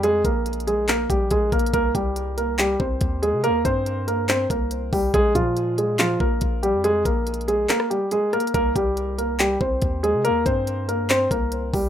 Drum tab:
HH |x-----x-----x-x-x-x-----x-----x-----x-----x-x-x-|x-----x-----x-----x-----x-----------x-----x-----|x-----x-----x-----x-----x-----x-----x-----o-----|x-----x-----x-----x-----x-----------x-----x-----|
CP |------------------------x-----------------------|------------------------x-----------------------|------------------------x-----------------------|------------------------x-----------------------|
SD |------------------------------------------------|------------------------------------------------|------------------------------------------------|------------------------------------------------|
BD |------o-----------------------o-----o-----o-----|o-----o-----------------------o-----o-----------|------o-----------------------o-----------o-----|o-----o-----------------------o-----o-----------|

HH |x-----x-----x-x-x-x-----x-----x-----x-----x-x-x-|x-----x-----x-----x-----x-----------x-----x-----|x-----x-----x-----x-----x-----x-----x-----o-----|
CP |------------------------x-----------------------|------------------------x-----------------------|------------------------x-----------------------|
SD |---------------------------r--------------r-----|------------------------------------------------|------------------------------------------------|
BD |------o-----------------------------------------|o-----o-----------------------o-----o-----------|------o-----------------------o-----------o-----|